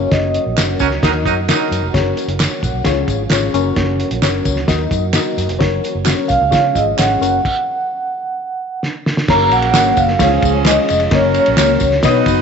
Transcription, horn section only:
0.80 0.87 F#3 medium
0.80 0.88 C#4 medium
0.80 0.87 A#4 medium
1.02 1.11 F#3 medium
1.02 1.10 D#4 medium
1.02 1.10 A#4 medium
1.25 1.33 F#3 medium
1.25 1.33 D#4 medium
1.25 1.33 A#4 medium
1.50 1.93 F#3 medium
1.50 1.93 D#4 medium
1.50 1.93 A#4 medium
9.29 9.97 C#3 medium
9.29 9.97 A#3 medium
9.29 9.97 F#4 medium
10.20 10.89 F3 medium
10.20 10.89 C#4 medium
10.20 10.88 G#4 medium
11.13 11.80 F#3 medium
11.13 11.80 C#4 medium
11.13 11.80 A#4 medium
12.04 12.42 F#3 medium
12.04 12.42 D#4 medium
12.04 12.42 B4 medium

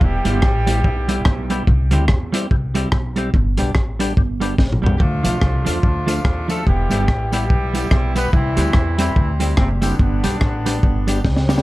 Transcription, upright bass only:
0.01 0.22 E1 loud
0.25 0.40 G1 medium
0.43 0.85 A1 medium
0.85 1.20 B1 medium
1.26 1.61 B1 medium
1.68 1.93 C2 loud
1.93 2.07 D2 medium
2.09 2.45 E2 medium
2.51 2.86 C2 medium
2.92 3.28 B1 medium
3.34 3.55 G1 loud
3.58 3.73 B1 medium
3.75 4.11 A1 medium
4.17 4.52 G1 medium
4.59 4.79 A1 medium
4.83 4.98 B1 medium
5.00 5.21 D2 loud
5.24 5.39 B1 medium
5.42 5.63 C2 medium
5.66 5.81 E2 medium
5.84 6.19 D2 medium
6.25 6.69 D#2 medium
6.67 6.88 E1 loud
6.91 7.06 G1 medium
7.08 7.50 A1 medium
7.50 7.85 B1 medium
7.92 8.27 B1 medium
8.33 8.54 C2 loud
8.57 8.72 D2 medium
8.75 9.10 E2 loud
9.16 9.52 D2 medium
9.58 9.93 F#1 medium
9.99 10.20 G1 loud
10.24 10.39 B1 medium
10.42 10.77 A1 medium
10.83 11.19 G1 medium
11.25 11.60 C#2 medium

